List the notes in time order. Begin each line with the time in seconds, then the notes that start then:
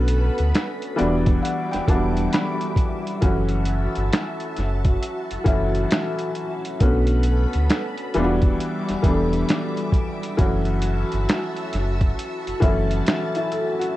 Already playing: B1 D3 A3 B3 C#4 F#4 A4 B4 B5
0.08 closed hi-hat
0.38 D2, closed hi-hat
0.55 finger snap, snare, closed hi-hat
0.82 closed hi-hat
0.96 E3 G3 B3 D4 F#4 D5 E5 D6, closed hi-hat
1.00 E1
1.26 kick, closed hi-hat
1.43 F#5, closed hi-hat
1.71 E1 G5, snare, closed hi-hat
1.88 E1 E3 F#3 B3 D4 F#4 A5, kick, closed hi-hat
1.95 G3
2.17 closed hi-hat
2.33 B5, finger snap, snare, closed hi-hat
2.61 closed hi-hat
2.76 kick, closed hi-hat
3.07 closed hi-hat
3.21 F#1 E3 F#3 A3 C#4 F#4 A5, kick, closed hi-hat
3.49 closed hi-hat
3.65 closed hi-hat
3.95 G1, closed hi-hat
4.13 finger snap, snare, closed hi-hat
4.40 closed hi-hat
4.56 F#1, snare, closed hi-hat
4.85 kick, closed hi-hat
5.03 closed hi-hat
5.31 F#1, closed hi-hat
5.44 F#1 E3 F#3 A3 C#4 E4, kick, closed hi-hat
5.75 closed hi-hat
5.91 finger snap, snare, closed hi-hat
6.19 closed hi-hat
6.35 closed hi-hat
6.65 closed hi-hat
6.80 B1 D3 A3 B3 C#4 F#4 A4 B4 B5, kick, closed hi-hat
7.07 closed hi-hat
7.23 closed hi-hat
7.53 D2, closed hi-hat
7.70 finger snap, snare, closed hi-hat
7.98 closed hi-hat
8.14 E1 E3 G3 B3 D4 F4 E5 D6, closed hi-hat
8.24 F#4
8.42 kick, closed hi-hat
8.60 closed hi-hat
8.89 E1, snare, closed hi-hat
9.03 E1 E3 G3 B3 D4 A4, kick, closed hi-hat
9.33 closed hi-hat
9.49 finger snap, snare, closed hi-hat
9.77 closed hi-hat
9.92 kick, closed hi-hat
10.23 closed hi-hat
10.37 F#1 E3 F#3 A3 C#4 F#4 A5, kick, closed hi-hat
10.65 closed hi-hat
10.82 closed hi-hat
11.12 G1, closed hi-hat
11.29 finger snap, snare, closed hi-hat
11.56 closed hi-hat
11.73 F#1, snare, closed hi-hat
12.01 kick, closed hi-hat
12.19 closed hi-hat
12.47 F#1, closed hi-hat
12.60 F#1 E3 F#3 A3 C#4 E4, kick, closed hi-hat
12.91 closed hi-hat
13.07 finger snap, snare, closed hi-hat
13.35 E4, closed hi-hat
13.52 A4, closed hi-hat
13.79 F#4, closed hi-hat